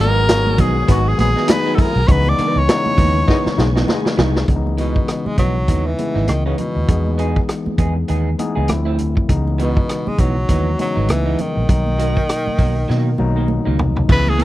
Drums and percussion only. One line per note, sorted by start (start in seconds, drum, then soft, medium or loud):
0.29 snare loud
0.29 closed hi-hat medium
0.47 high conga medium
0.58 kick medium
0.58 closed hi-hat medium
0.58 muted conga soft
0.58 high conga soft
0.58 low conga medium
0.88 kick medium
0.88 closed hi-hat medium
1.19 closed hi-hat medium
1.19 high conga medium
1.37 snare soft
1.48 snare loud
1.48 closed hi-hat loud
1.48 high conga medium
1.78 kick loud
1.78 open hi-hat soft
1.78 low conga medium
2.08 kick loud
2.08 closed hi-hat medium
2.08 low conga medium
2.27 high conga medium
2.39 closed hi-hat medium
2.69 snare loud
2.69 closed hi-hat medium
2.86 high conga medium
2.98 kick medium
2.98 open hi-hat medium
2.98 muted conga soft
2.98 high conga medium
2.98 low conga medium
3.28 kick medium
3.28 snare medium
3.28 muted conga soft
3.46 snare medium
3.58 snare medium
3.58 high conga medium
3.76 snare medium
3.88 snare medium
3.88 muted conga soft
3.88 high conga medium
4.06 snare medium
4.18 snare loud
4.18 muted conga soft
4.18 low conga medium
4.36 snare medium
4.48 kick medium
4.48 closed hi-hat medium
4.48 muted conga soft
4.48 low conga medium
4.67 high conga medium
4.78 closed hi-hat medium
4.96 kick medium
5.08 cross-stick medium
5.08 closed hi-hat medium
5.08 muted conga soft
5.26 high conga medium
5.38 kick medium
5.38 closed hi-hat medium
5.38 muted conga soft
5.38 high conga soft
5.38 low conga medium
5.68 kick medium
5.68 closed hi-hat medium
5.68 muted conga soft
5.98 closed hi-hat medium
5.98 high conga medium
6.17 cross-stick soft
6.27 cross-stick medium
6.27 closed hi-hat medium
6.27 muted conga soft
6.27 high conga medium
6.58 closed hi-hat medium
6.58 muted conga soft
6.58 low conga medium
6.88 kick medium
6.88 closed hi-hat medium
6.88 muted conga soft
6.88 low conga medium
7.06 high conga medium
7.19 closed hi-hat medium
7.19 muted conga soft
7.36 kick medium
7.49 cross-stick medium
7.49 closed hi-hat medium
7.49 muted conga soft
7.66 high conga medium
7.78 kick medium
7.78 closed hi-hat medium
7.78 muted conga soft
7.78 high conga soft
7.78 low conga medium
8.08 closed hi-hat medium
8.39 closed hi-hat medium
8.39 high conga medium
8.68 cross-stick medium
8.68 closed hi-hat medium
8.68 muted conga soft
8.68 high conga medium
8.98 closed hi-hat medium
8.98 muted conga soft
8.98 low conga medium
9.17 kick medium
9.29 kick medium
9.29 closed hi-hat medium
9.29 low conga medium
9.47 high conga medium
9.59 closed hi-hat medium
9.59 muted conga soft
9.77 kick medium
9.89 cross-stick medium
9.89 closed hi-hat medium
9.89 muted conga soft
10.07 high conga medium
10.18 kick medium
10.18 closed hi-hat medium
10.18 high conga soft
10.18 low conga medium
10.49 kick medium
10.49 closed hi-hat medium
10.49 muted conga soft
10.79 closed hi-hat medium
10.79 muted conga soft
10.79 high conga medium
11.08 cross-stick medium
11.08 closed hi-hat medium
11.08 muted conga soft
11.08 high conga medium
11.39 closed hi-hat medium
11.39 muted conga soft
11.39 low conga medium
11.69 kick medium
11.69 closed hi-hat medium
11.69 low conga medium
11.87 high conga medium
11.99 closed hi-hat medium
12.17 kick medium
12.29 cross-stick loud
12.29 closed hi-hat medium
12.46 high conga medium
12.59 kick medium
12.59 open hi-hat soft
12.59 high conga soft
12.59 low conga medium
12.89 snare soft
12.89 muted conga soft
13.18 high conga medium
13.48 muted conga soft
13.48 high conga medium
13.79 floor tom medium
13.79 muted conga soft
13.79 low conga medium
13.96 floor tom medium
14.09 kick loud
14.09 crash loud
14.09 muted conga soft
14.09 low conga medium
14.27 high conga medium
14.39 closed hi-hat medium
14.39 muted conga soft